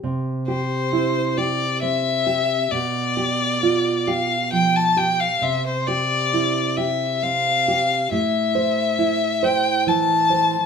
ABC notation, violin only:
X:1
M:3/4
L:1/16
Q:1/4=67
K:C
V:1 name="Violin"
z2 c4 d2 e4 | d6 f2 g a g f | e c d4 e2 f4 | e6 g2 a4 |]